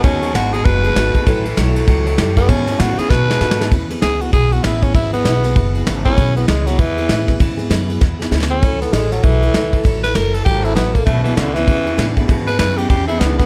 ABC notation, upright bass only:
X:1
M:4/4
L:1/8
Q:"Swing" 1/4=196
K:E
V:1 name="Upright bass" clef=bass
D,,2 G,,,2 F,,,2 G,,, z | A,,,2 B,,,2 C,,2 F,,2 | G,,2 A,, z B,,2 G,,2 | E,,2 C,,2 B,,,2 A,,,2 |
G,,,2 B,,,2 F,,,2 G,,,2 | B,,,2 C,,2 E,,2 A,,2 | G,,2 F,,2 E,,2 =D,,2 | C,,2 A,,,2 B,,,2 z2 |
A,,,2 F,,,2 G,,,2 A,,,2 | B,,,2 C,,2 E,,2 A,,2 | G,,2 F,,2 E,,2 C,,2 |]